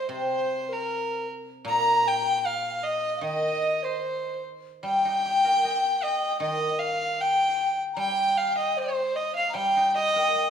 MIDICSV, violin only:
0, 0, Header, 1, 2, 480
1, 0, Start_track
1, 0, Tempo, 788436
1, 65, Time_signature, 2, 2, 24, 8
1, 6392, End_track
2, 0, Start_track
2, 0, Title_t, "Violin"
2, 0, Program_c, 0, 40
2, 0, Note_on_c, 0, 72, 66
2, 71, Note_off_c, 0, 72, 0
2, 74, Note_on_c, 0, 72, 73
2, 441, Note_on_c, 0, 70, 66
2, 451, Note_off_c, 0, 72, 0
2, 790, Note_off_c, 0, 70, 0
2, 1031, Note_on_c, 0, 82, 91
2, 1265, Note_on_c, 0, 79, 88
2, 1274, Note_off_c, 0, 82, 0
2, 1498, Note_on_c, 0, 77, 77
2, 1507, Note_off_c, 0, 79, 0
2, 1729, Note_on_c, 0, 75, 69
2, 1739, Note_off_c, 0, 77, 0
2, 1968, Note_off_c, 0, 75, 0
2, 1972, Note_on_c, 0, 75, 73
2, 2341, Note_on_c, 0, 72, 61
2, 2350, Note_off_c, 0, 75, 0
2, 2706, Note_off_c, 0, 72, 0
2, 2961, Note_on_c, 0, 79, 85
2, 3674, Note_on_c, 0, 75, 74
2, 3683, Note_off_c, 0, 79, 0
2, 3903, Note_off_c, 0, 75, 0
2, 3907, Note_on_c, 0, 75, 78
2, 4136, Note_on_c, 0, 77, 80
2, 4145, Note_off_c, 0, 75, 0
2, 4391, Note_on_c, 0, 79, 81
2, 4400, Note_off_c, 0, 77, 0
2, 4747, Note_off_c, 0, 79, 0
2, 4863, Note_on_c, 0, 79, 83
2, 5099, Note_on_c, 0, 77, 78
2, 5108, Note_off_c, 0, 79, 0
2, 5220, Note_off_c, 0, 77, 0
2, 5225, Note_on_c, 0, 75, 67
2, 5347, Note_on_c, 0, 72, 73
2, 5356, Note_off_c, 0, 75, 0
2, 5578, Note_on_c, 0, 75, 72
2, 5587, Note_off_c, 0, 72, 0
2, 5696, Note_off_c, 0, 75, 0
2, 5700, Note_on_c, 0, 77, 74
2, 5812, Note_off_c, 0, 77, 0
2, 5821, Note_on_c, 0, 79, 75
2, 6046, Note_off_c, 0, 79, 0
2, 6060, Note_on_c, 0, 75, 95
2, 6392, Note_off_c, 0, 75, 0
2, 6392, End_track
0, 0, End_of_file